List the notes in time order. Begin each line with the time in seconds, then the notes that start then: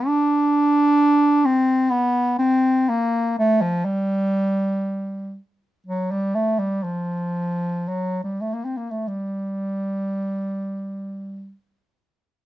0.07 D4
1.45 C4
1.91 B3
2.39 C4
2.89 A#3
3.39 A3
3.62 F3
3.85 G3
5.87 F#3
6.11 G3
6.35 A3
6.59 G3
6.84 F3
7.88 F#3
8.24 G3
8.41 A3
8.53 A#3
8.65 C4
8.77 A#3
8.91 A3
9.08 G3